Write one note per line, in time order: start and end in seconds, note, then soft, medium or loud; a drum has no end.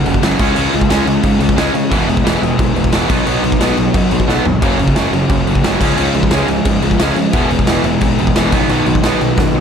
0.00 0.38 F#3 medium
0.00 0.40 A#3 medium
0.00 0.39 C#4 medium
0.00 0.38 F#4 medium
0.06 0.17 F#1 medium
0.06 0.20 F#2 medium
0.06 0.21 C#3 medium
0.06 crash medium
0.14 kick medium
0.21 0.34 F#1 medium
0.21 0.38 F#2 medium
0.21 0.38 C#3 loud
0.21 0.39 F#3 loud
0.21 snare loud
0.21 crash medium
0.39 0.50 C#2 medium
0.39 0.55 C#3 medium
0.39 0.55 G#3 loud
0.39 0.56 C#4 loud
0.39 0.91 F4 loud
0.39 kick loud
0.39 crash loud
0.56 0.67 C#2 medium
0.56 0.72 C#3 medium
0.56 0.73 G#3 medium
0.56 0.73 C#4 medium
0.56 crash medium
0.73 0.84 C#2 medium
0.73 0.89 C#3 medium
0.73 0.89 G#3 medium
0.73 crash medium
0.81 kick loud
0.90 1.01 C#2 medium
0.90 1.05 C#3 medium
0.90 1.06 G#3 medium
0.90 1.07 C#4 medium
0.90 1.75 F4 medium
0.90 snare loud
0.90 crash medium
1.06 1.17 C#2 medium
1.06 1.21 C#3 medium
1.06 1.22 G#3 medium
1.06 crash medium
1.22 1.34 G#2 medium
1.22 1.38 C#3 medium
1.22 1.38 G#3 medium
1.22 kick loud
1.22 crash medium
1.39 1.50 C#2 medium
1.39 1.55 C#3 medium
1.39 1.55 G#3 medium
1.39 crash medium
1.49 kick medium
1.56 1.68 C#2 medium
1.56 1.72 C#3 medium
1.56 1.72 G#3 loud
1.56 1.74 C#4 loud
1.56 snare loud
1.56 crash medium
1.73 1.89 C#3 medium
1.73 1.94 C#3 loud
1.73 1.89 G#3 medium
1.73 crash medium
1.90 2.02 E1 medium
1.90 2.07 E2 medium
1.90 2.07 B2 loud
1.90 2.07 E3 medium
1.90 2.08 G#3 loud
1.90 2.08 B3 loud
1.90 2.40 E4 loud
1.90 kick loud
1.90 crash medium
2.08 2.18 E1 medium
2.08 2.23 E2 medium
2.08 2.24 B2 medium
2.08 2.23 E3 medium
2.08 2.24 G#3 medium
2.08 crash medium
2.17 kick medium
2.24 2.36 E1 medium
2.24 2.41 E2 medium
2.24 2.41 B2 loud
2.24 2.40 E3 medium
2.24 2.40 G#3 medium
2.24 2.42 B3 loud
2.24 snare loud
2.24 crash medium
2.41 2.53 E1 medium
2.41 2.57 E2 medium
2.41 2.58 B2 medium
2.41 2.56 E3 medium
2.41 2.57 G#3 medium
2.41 3.09 B3 medium
2.41 3.09 E4 medium
2.41 crash medium
2.58 2.69 B1 loud
2.58 2.74 E2 medium
2.58 2.75 B2 medium
2.58 2.73 E3 medium
2.58 2.73 G#3 medium
2.58 kick loud
2.58 crash medium
2.74 2.87 E1 medium
2.74 2.91 E2 medium
2.74 2.92 B2 medium
2.74 2.91 E3 medium
2.74 2.91 G#3 medium
2.74 crash medium
2.84 kick medium
2.92 3.04 E1 medium
2.92 3.09 E2 medium
2.92 3.08 B2 loud
2.92 3.09 E3 medium
2.92 3.09 G#3 loud
2.92 3.09 B3 loud
2.92 snare loud
2.92 crash medium
3.09 3.20 B1 medium
3.09 3.25 B2 medium
3.09 3.26 F#3 loud
3.09 3.26 B3 loud
3.09 3.61 D#4 loud
3.09 kick loud
3.09 crash loud
3.27 3.37 B1 medium
3.27 3.42 B2 medium
3.27 3.42 F#3 medium
3.27 3.44 B3 medium
3.27 crash medium
3.43 3.53 B1 medium
3.43 3.58 B2 medium
3.43 3.59 F#3 medium
3.43 crash medium
3.52 kick medium
3.59 3.70 B1 medium
3.59 3.76 B2 medium
3.59 3.77 F#3 loud
3.59 3.77 B3 loud
3.59 4.45 D#4 medium
3.59 snare loud
3.59 crash medium
3.77 3.88 B1 medium
3.77 3.93 B2 medium
3.77 3.93 F#3 medium
3.77 crash medium
3.94 4.05 F#2 medium
3.94 4.10 B2 medium
3.94 4.10 F#3 medium
3.94 kick loud
3.94 crash medium
4.11 4.21 B1 medium
4.11 4.26 B2 medium
4.11 4.27 F#3 medium
4.11 crash medium
4.20 kick medium
4.27 4.39 B1 medium
4.27 4.43 B2 loud
4.27 4.44 F#3 loud
4.27 4.45 B3 loud
4.27 snare medium
4.45 4.56 G#1 medium
4.45 4.60 B2 medium
4.45 4.61 F#3 medium
4.45 floor tom medium
4.61 4.73 F#1 medium
4.61 4.78 F#2 medium
4.61 4.78 C#3 medium
4.61 4.79 F#3 medium
4.61 5.11 A#3 loud
4.61 5.12 C#4 loud
4.61 kick loud
4.61 crash medium
4.78 4.89 F#1 medium
4.78 4.95 F#2 medium
4.78 4.95 C#3 medium
4.78 crash medium
4.88 kick medium
4.96 5.06 F#1 loud
4.96 5.12 F#2 medium
4.96 5.13 C#3 medium
4.96 5.13 F#3 loud
4.96 snare loud
4.96 crash medium
5.12 5.22 F#1 medium
5.12 5.29 F#2 medium
5.12 5.29 C#3 medium
5.12 5.80 F#3 medium
5.12 5.80 A#3 medium
5.12 5.79 C#4 medium
5.12 crash medium
5.29 5.40 C#2 medium
5.29 5.46 F#2 medium
5.29 5.46 C#3 medium
5.29 kick loud
5.29 crash medium
5.47 5.58 F#1 medium
5.47 5.62 F#2 medium
5.47 5.62 C#3 medium
5.47 crash medium
5.55 kick medium
5.63 5.75 F#1 loud
5.63 5.80 F#2 medium
5.63 5.80 C#3 loud
5.63 5.80 F#3 loud
5.63 snare loud
5.63 crash medium
5.81 5.91 C#2 loud
5.81 5.96 C#3 medium
5.81 5.96 F3 loud
5.81 5.97 G#3 loud
5.81 5.97 C#4 loud
5.81 6.32 C#4 loud
5.81 kick loud
5.81 crash loud
5.97 6.08 C#2 medium
5.97 6.14 C#3 medium
5.97 6.14 F3 medium
5.97 6.14 G#3 medium
5.97 6.14 C#4 loud
5.97 crash medium
6.14 6.25 C#2 medium
6.14 6.30 C#3 medium
6.14 6.31 F3 medium
6.14 6.30 G#3 medium
6.14 crash medium
6.23 kick medium
6.31 6.42 C#2 medium
6.31 6.47 C#3 medium
6.31 6.48 F3 loud
6.31 6.48 G#3 loud
6.31 6.48 C#4 loud
6.31 7.17 C#4 medium
6.31 snare loud
6.31 crash medium
6.48 6.59 C#2 medium
6.48 6.64 C#3 medium
6.48 6.64 F3 medium
6.48 6.64 G#3 medium
6.48 crash medium
6.65 6.76 G#2 medium
6.65 6.81 C#3 medium
6.65 6.81 F3 medium
6.65 6.81 G#3 medium
6.65 kick loud
6.65 crash medium
6.82 6.93 C#2 medium
6.82 6.98 C#3 medium
6.82 6.98 F3 medium
6.82 6.98 G#3 medium
6.82 crash medium
6.91 kick medium
6.99 7.10 C#2 medium
6.99 7.15 C#3 medium
6.99 7.15 F3 loud
6.99 7.16 G#3 loud
6.99 7.16 C#4 loud
6.99 snare loud
6.99 crash medium
7.16 7.31 C#3 medium
7.16 7.26 C#3 medium
7.16 7.32 F3 medium
7.16 7.32 G#3 medium
7.16 crash medium
7.33 7.44 E1 medium
7.33 7.49 E2 medium
7.33 7.49 B2 loud
7.33 7.50 E3 medium
7.33 7.50 G#3 medium
7.33 7.50 B3 medium
7.33 7.82 E4 loud
7.33 kick loud
7.33 crash medium
7.50 7.61 E1 medium
7.50 7.66 E2 medium
7.50 7.67 B2 medium
7.50 7.66 E3 medium
7.50 7.67 G#3 medium
7.50 crash medium
7.59 kick medium
7.67 7.78 E1 medium
7.67 7.83 E2 medium
7.67 7.84 B2 medium
7.67 7.83 E3 medium
7.67 7.84 G#3 loud
7.67 7.84 B3 loud
7.67 snare loud
7.67 crash medium
7.84 7.94 E1 medium
7.84 8.00 E2 medium
7.84 8.01 B2 medium
7.84 8.00 E3 medium
7.84 8.00 G#3 medium
7.84 8.52 B3 medium
7.84 8.51 E4 medium
7.84 crash medium
8.01 8.12 B1 loud
8.01 8.17 E2 medium
8.01 8.17 B2 medium
8.01 8.17 E3 medium
8.01 8.17 G#3 medium
8.01 kick loud
8.01 crash medium
8.18 8.28 E1 medium
8.18 8.34 E2 medium
8.18 8.34 B2 medium
8.18 8.35 E3 medium
8.18 8.34 G#3 medium
8.18 crash medium
8.27 kick medium
8.35 8.53 E1 medium
8.35 8.51 E2 medium
8.35 8.50 B2 medium
8.35 8.51 E3 loud
8.35 8.52 G#3 loud
8.35 8.52 B3 loud
8.35 snare loud
8.35 crash medium
8.52 8.63 B1 medium
8.52 8.68 B2 loud
8.52 8.69 D#3 loud
8.52 8.69 F#3 loud
8.52 8.69 B3 loud
8.52 9.04 B3 loud
8.52 9.04 D#4 loud
8.52 kick loud
8.52 crash loud
8.69 8.80 B1 medium
8.69 8.86 B2 medium
8.69 8.86 D#3 loud
8.69 8.86 F#3 medium
8.69 8.86 B3 loud
8.69 crash medium
8.86 8.97 B1 medium
8.86 9.02 B2 medium
8.86 9.02 D#3 medium
8.86 9.01 F#3 medium
8.86 crash medium
8.95 kick medium
9.03 9.14 B1 medium
9.03 9.19 B2 medium
9.03 9.20 D#3 loud
9.03 9.20 F#3 loud
9.03 9.20 B3 loud
9.03 9.60 B3 medium
9.03 9.60 D#4 medium
9.03 snare loud
9.03 crash medium
9.21 9.31 B1 medium
9.21 9.36 B2 medium
9.21 9.36 D#3 medium
9.21 9.36 F#3 medium
9.21 crash medium
9.37 9.48 F#2 medium
9.37 9.52 B2 medium
9.37 9.53 D#3 medium
9.37 9.53 F#3 medium
9.37 kick loud
9.37 snare medium
9.54 9.60 B1 medium
9.54 9.60 B2 medium
9.54 9.60 D#3 medium
9.54 9.60 F#3 medium